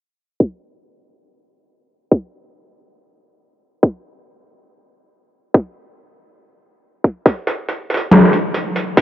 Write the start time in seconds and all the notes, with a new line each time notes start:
0.40 kick
2.12 kick
3.83 kick
5.54 kick
7.04 kick
7.26 kick, closed hi-hat
7.47 closed hi-hat
7.69 closed hi-hat
7.90 closed hi-hat
7.94 closed hi-hat
7.97 closed hi-hat
8.11 snare, closed hi-hat
8.33 closed hi-hat
8.54 closed hi-hat
8.76 closed hi-hat
8.97 kick, closed hi-hat